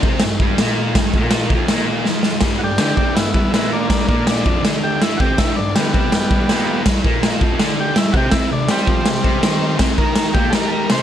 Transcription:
0.03 0.22 C3 medium
0.03 0.22 C4 loud
0.03 kick loud
0.20 snare loud
0.20 crash medium
0.24 0.38 G2 medium
0.40 0.59 G2 medium
0.40 0.59 G3 loud
0.40 kick loud
0.58 0.95 A#2 medium
0.58 0.96 A#3 loud
0.58 snare loud
0.58 crash medium
0.95 1.15 G2 loud
0.95 1.15 G3 loud
0.95 kick loud
0.95 snare loud
0.95 crash medium
1.14 1.51 A#2 loud
1.14 1.52 A#3 loud
1.14 kick loud
1.31 snare loud
1.31 crash medium
1.50 1.70 F2 medium
1.50 kick loud
1.55 1.71 F3 loud
1.68 2.06 A#2 loud
1.68 2.06 A#3 loud
1.68 snare loud
1.68 crash medium
2.05 2.43 F2 loud
2.05 2.44 F3 loud
2.05 snare medium
2.23 snare loud
2.41 2.60 G2 loud
2.41 kick loud
2.41 snare loud
2.41 crash medium
2.45 2.62 G3 loud
2.59 2.76 G2 medium
2.59 2.61 F#4 medium
2.64 2.79 D4 medium
2.64 2.80 G4 medium
2.78 2.95 D3 medium
2.78 2.96 D4 loud
2.78 2.95 D4 medium
2.78 2.96 G4 medium
2.78 snare loud
2.78 crash medium
2.96 3.15 C3 medium
2.96 3.15 C4 medium
2.96 3.14 D4 medium
2.96 3.16 G4 medium
2.96 kick loud
3.15 3.30 G2 medium
3.15 3.31 B3 medium
3.15 3.32 E4 medium
3.15 snare loud
3.15 crash medium
3.33 3.53 G2 loud
3.33 3.53 G3 loud
3.33 3.51 B3 medium
3.33 3.52 E4 medium
3.33 kick loud
3.52 3.89 A#2 medium
3.52 3.91 A#3 loud
3.52 3.71 B3 medium
3.52 3.72 E4 medium
3.52 snare loud
3.52 crash medium
3.73 3.88 A#3 medium
3.73 3.87 D4 medium
3.88 4.08 G2 loud
3.88 4.09 G3 loud
3.88 4.07 A#3 medium
3.88 4.07 D4 medium
3.88 kick loud
3.88 snare loud
3.88 crash medium
4.08 4.45 A#2 medium
4.08 4.26 A#3 medium
4.08 4.46 A#3 medium
4.08 4.27 D4 medium
4.08 kick loud
4.27 4.64 D4 medium
4.27 snare loud
4.27 crash medium
4.43 4.63 F2 loud
4.43 4.63 F3 loud
4.43 kick loud
4.61 4.99 D3 medium
4.61 5.00 D4 loud
4.61 snare loud
4.61 crash medium
4.83 5.01 G4 medium
5.01 5.19 G2 medium
5.01 5.20 G3 loud
5.01 5.20 E4 medium
5.01 snare loud
5.01 crash medium
5.17 5.37 C3 medium
5.17 5.38 C4 loud
5.17 5.19 F#4 medium
5.17 5.38 G4 loud
5.17 kick loud
5.37 5.56 G2 medium
5.37 5.56 G3 loud
5.37 5.56 E4 loud
5.37 kick loud
5.37 snare loud
5.37 crash medium
5.56 5.72 G2 medium
5.56 5.74 D4 medium
5.75 5.93 D3 medium
5.75 6.82 G3 medium
5.75 6.83 B3 loud
5.75 5.94 D4 loud
5.75 snare loud
5.75 crash medium
5.94 6.12 C3 medium
5.94 6.12 C4 loud
5.94 kick loud
6.12 6.27 G2 medium
6.12 snare loud
6.12 crash medium
6.31 6.49 G2 loud
6.31 6.49 G3 loud
6.31 kick loud
6.49 6.85 A#2 loud
6.49 6.85 A#3 loud
6.49 snare loud
6.49 crash medium
6.86 7.04 G2 medium
6.86 7.04 G3 loud
6.86 kick loud
6.86 snare loud
6.86 crash medium
7.04 7.41 A#2 medium
7.04 7.41 A#3 loud
7.04 kick loud
7.23 snare loud
7.23 crash medium
7.40 7.59 F2 medium
7.40 7.59 F3 loud
7.40 kick loud
7.59 7.95 D3 medium
7.59 7.96 D4 loud
7.59 snare loud
7.59 crash medium
7.80 7.97 G4 medium
7.95 8.13 G2 loud
7.95 8.14 G3 loud
7.95 8.15 E4 medium
7.95 snare loud
7.95 crash medium
8.13 8.29 C3 medium
8.13 8.30 C4 loud
8.13 8.15 F#4 medium
8.13 kick loud
8.17 8.34 G4 loud
8.30 8.49 C3 loud
8.30 8.50 C4 loud
8.30 8.50 E4 medium
8.30 kick loud
8.30 snare loud
8.30 crash medium
8.51 8.66 C3 medium
8.51 8.70 D4 medium
8.69 8.87 G3 loud
8.69 9.77 G3 medium
8.69 9.77 C4 loud
8.69 8.88 G4 loud
8.69 snare loud
8.69 crash medium
8.87 9.05 F3 loud
8.87 9.06 F4 loud
8.87 kick loud
9.06 9.21 C3 medium
9.06 snare loud
9.06 crash medium
9.23 9.42 C3 medium
9.23 9.42 C4 loud
9.23 kick loud
9.43 9.78 D#3 medium
9.43 9.80 D#4 loud
9.43 snare loud
9.43 crash medium
9.79 9.97 C3 medium
9.79 9.98 C4 loud
9.79 kick loud
9.79 snare loud
9.79 crash medium
9.98 10.35 D#3 medium
9.98 10.35 D#4 loud
9.98 10.34 A#4 loud
9.98 kick loud
10.16 snare loud
10.16 crash medium
10.34 10.53 A#2 medium
10.34 10.54 A#3 loud
10.34 10.52 G4 medium
10.34 kick loud
10.50 10.90 G3 loud
10.50 10.90 G4 loud
10.50 10.53 A4 medium
10.50 snare loud
10.50 crash medium
10.55 10.71 A#4 loud
10.68 10.71 A4 medium
10.68 10.90 A#4 medium
10.89 11.02 C3 loud
10.89 11.02 C4 loud
10.89 11.02 C5 loud
10.89 snare loud
10.89 crash medium

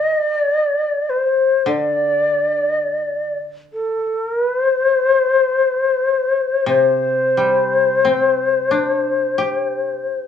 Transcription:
0.00 0.03 D5 medium
0.00 0.26 D#5 medium
0.26 1.11 D5 medium
1.09 1.70 C5 medium
1.66 5.04 D3 soft
1.66 3.40 D5 medium
3.73 4.20 A4 medium
4.20 4.42 A#4 medium
4.42 4.64 B4 medium
4.64 6.65 C5 medium
6.66 10.04 C3 soft
6.66 10.27 C5 medium
7.37 10.06 G3 soft
8.05 10.27 C4 soft
8.71 10.27 D4 soft
9.38 10.27 G4 soft

